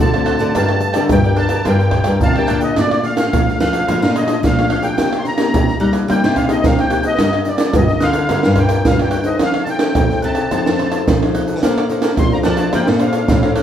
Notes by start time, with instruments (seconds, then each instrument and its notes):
Already playing: cavaquinho A4 C5 D5
0.00 nylon-string guitar A2 D3, accordion A5
0.13 nylon-string guitar A3 C4 F#4, cavaquinho A4 C5 D5, pandeiro, tamborim, shaker
0.26 cavaquinho F#4 A4 C5 D5, pandeiro, tamborim, high agogo
0.39 nylon-string guitar D3, cavaquinho A4 C5 D5, pandeiro, shaker
0.55 nylon-string guitar G2 G3 D4 G4 A#4, cavaquinho D4 A#4 D5 G5, accordion A5, pandeiro, tamborim, shaker, surdo
0.69 cavaquinho A#4 D5 G5, pandeiro, tamborim, shaker
0.80 muted cavaquinho stroke, pandeiro, shaker
0.93 nylon-string guitar D3 D4 G4 A#4, cavaquinho A#4 D5 G5, pandeiro, tamborim, shaker
1.09 nylon-string guitar G2 D3, accordion G5, pandeiro, tamborim, shaker, surdo
1.23 nylon-string guitar D4 G4 A#4, cavaquinho A#4 D5 G5, pandeiro, shaker
1.36 cavaquinho D4 A#4 D5 G5, accordion A5, pandeiro, high agogo
1.49 nylon-string guitar D4 G4 A#4, cavaquinho A#4 D5 G5, pandeiro, tamborim, shaker
1.65 nylon-string guitar G2 G3 D4 G4 A#4, cavaquinho D4 A#4 D5 G5, accordion G5, pandeiro, tamborim, low agogo, shaker, surdo
1.79 cavaquinho A#4 D5 G5, pandeiro, shaker
1.91 pandeiro, tamborim, low agogo, surdo
2.04 nylon-string guitar G2 D4 G4 A#4, cavaquinho A#4 D5 G5, pandeiro, tamborim, shaker
2.21 nylon-string guitar C3 D3, accordion F5 A5, pandeiro, shaker, surdo
2.34 nylon-string guitar D4, cavaquinho A#4 D5 G5, accordion G5, pandeiro, tamborim, shaker
2.39 nylon-string guitar G4 A#4
2.47 nylon-string guitar A#2, cavaquinho D4 A#4 D5 G5, pandeiro, tamborim, high agogo, shaker
2.61 cavaquinho A#4 D5 G5, accordion D#5, pandeiro, shaker
2.76 nylon-string guitar A#2 A3 D4 F4, accordion D5, snare, pandeiro, tamborim, shaker, surdo
2.91 snare, pandeiro, tamborim, shaker
3.04 accordion F5, snare, pandeiro
3.16 nylon-string guitar A3 D4 F4, snare, pandeiro, tamborim, shaker
3.32 nylon-string guitar A#2 F3, snare, pandeiro, tamborim, shaker, surdo
3.48 nylon-string guitar A3 D4 F4, snare, pandeiro, shaker
3.60 nylon-string guitar F3, accordion F5, snare, pandeiro, high agogo, shaker
3.73 snare, pandeiro, tamborim, shaker
3.88 nylon-string guitar A#2 F3 A3 D4 F4, snare, pandeiro, tamborim, low agogo, shaker, surdo
4.02 nylon-string guitar A#2, snare, pandeiro, shaker
4.16 accordion D#5, snare, pandeiro, tamborim, low agogo, shaker
4.27 nylon-string guitar A3 D4 F4, snare, pandeiro, tamborim, shaker
4.43 nylon-string guitar A#2 F3, accordion F5, snare, pandeiro, shaker, surdo
4.58 nylon-string guitar A3 D4 F4, snare, pandeiro, tamborim, shaker
4.70 snare, pandeiro, tamborim, high agogo
4.83 accordion G5, snare, pandeiro, shaker
4.98 nylon-string guitar C3 A#3 D#4 G4, snare, pandeiro, tamborim, shaker, surdo
5.13 snare, pandeiro, tamborim, shaker
5.19 accordion C6
5.25 accordion A#5, snare, pandeiro
5.38 nylon-string guitar A#3 D#4 G4, snare, pandeiro, tamborim, shaker
5.54 nylon-string guitar C3 G3, snare, pandeiro, tamborim, shaker, surdo
5.68 snare, pandeiro, shaker
5.80 nylon-string guitar G3 A#3 D#4 G4, accordion A#5, pandeiro, high agogo
5.93 snare, pandeiro, tamborim, shaker
6.08 nylon-string guitar C3 G3 A#3 D#4 G4, accordion G5, snare, pandeiro, tamborim, low agogo, shaker, surdo
6.24 nylon-string guitar C3, snare, pandeiro, shaker
6.36 accordion F5, snare, pandeiro, tamborim, low agogo, shaker, surdo
6.48 nylon-string guitar A#3 D#4 G4, accordion D#5, snare, pandeiro, tamborim, shaker
6.64 nylon-string guitar C3 G3, accordion F5, snare, pandeiro, shaker, surdo
6.79 accordion G5, snare, pandeiro, tamborim, shaker
6.90 nylon-string guitar A#3 D#4 G4, snare, pandeiro, tamborim, high agogo, shaker
7.03 accordion D#5, snare, pandeiro, shaker
7.19 nylon-string guitar G2 G3 D4 F4 A#4, snare, pandeiro, tamborim, shaker, surdo
7.33 snare, pandeiro, tamborim, shaker
7.45 accordion D5, snare, pandeiro, shaker
7.58 nylon-string guitar D4 F4 A#4, snare, pandeiro, tamborim, shaker
7.73 nylon-string guitar G2 D3, accordion D#5, snare, pandeiro, tamborim, shaker, surdo
7.88 nylon-string guitar D4 F4 A#4, snare, pandeiro, shaker
8.00 nylon-string guitar D3, accordion F5, snare, pandeiro, high agogo, shaker
8.13 nylon-string guitar D4 F4 A#4, snare, pandeiro, tamborim, shaker
8.29 nylon-string guitar D3 G3 D4 F4 A#4, snare, pandeiro, tamborim, low agogo, shaker, surdo
8.43 nylon-string guitar G2, snare, pandeiro, shaker
8.56 accordion G5, snare, pandeiro, tamborim, low agogo, shaker, surdo
8.69 nylon-string guitar D4 F4 A#4, snare, pandeiro, tamborim, shaker
8.85 nylon-string guitar G2 D3, accordion F5, snare, pandeiro, shaker, surdo
8.99 nylon-string guitar D4 F4 A#4, accordion G5, snare, pandeiro, tamborim, shaker
9.11 snare, pandeiro, tamborim, high agogo, shaker
9.24 nylon-string guitar D#4 A4 C5, accordion D#5, snare, pandeiro, shaker
9.39 nylon-string guitar F2 F3, accordion F5, snare, pandeiro, tamborim, shaker, surdo
9.54 snare, pandeiro, tamborim, shaker
9.63 accordion A5, snare, pandeiro, shaker
9.70 accordion G5
9.79 nylon-string guitar D#4 A4 C5, snare, pandeiro, tamborim, shaker
9.95 nylon-string guitar F2 C3, snare, pandeiro, tamborim, shaker, surdo
10.10 nylon-string guitar D#4 A4 C5, snare, pandeiro, shaker
10.22 nylon-string guitar C3, accordion A5, pandeiro, high agogo, shaker
10.35 snare, pandeiro, tamborim, shaker
10.51 nylon-string guitar C3 F3 D#4 A4 C5, snare, pandeiro, tamborim, low agogo, shaker, surdo
10.66 nylon-string guitar F2, snare, pandeiro, shaker
10.79 snare, pandeiro, tamborim, low agogo
10.92 nylon-string guitar D#4 A4 C5, snare, pandeiro, tamborim, shaker
11.08 nylon-string guitar C3 F3, snare, pandeiro, shaker, surdo
11.22 nylon-string guitar D#4 A4 C5, snare, pandeiro, tamborim, shaker
11.35 snare, pandeiro, tamborim, high agogo, shaker
11.48 snare, pandeiro, shaker
11.63 nylon-string guitar A#2 A#3 D4 A4 C5, cavaquinho A4 D5 F5 A#5, snare, pandeiro, tamborim, shaker, surdo
11.78 cavaquinho A4 D5 F5 A#5, snare, pandeiro, tamborim, shaker
11.89 nylon-string guitar D4 A4 C5, cavaquinho A4 D5 F5 A#5, snare, pandeiro, shaker
12.02 cavaquinho A4 D5 F5 A#5, snare, pandeiro, tamborim, shaker
12.17 nylon-string guitar A#2 F3, accordion C6, snare, pandeiro, tamborim, shaker, surdo
12.32 nylon-string guitar D4 A4 C5, cavaquinho D5 F5 A#5, accordion A#5, snare, pandeiro, shaker
12.43 nylon-string guitar F3, cavaquinho A4 D5 F5 A#5, accordion A5, snare, pandeiro, high agogo, shaker
12.57 nylon-string guitar D4 A4 C5, cavaquinho D5 F5 A#5, snare, pandeiro, tamborim, shaker
12.73 nylon-string guitar F3 A#3, cavaquinho A4 D5 F5 A#5, accordion G5, snare, pandeiro, tamborim, low agogo, shaker, surdo
12.87 nylon-string guitar A#2, snare, pandeiro, shaker
13.00 nylon-string guitar D4 A4 C5, cavaquinho D5 F5 A#5, accordion F5, snare, pandeiro, tamborim, low agogo, shaker
13.13 snare, pandeiro, tamborim, shaker
13.28 nylon-string guitar A2 F3, snare, pandeiro, shaker, surdo
13.43 nylon-string guitar D4 A4 C5, cavaquinho D5 F5 A#5, snare, pandeiro, tamborim, shaker
13.56 cavaquinho A4 D5 F5 A#5, snare, pandeiro, tamborim, high agogo, shaker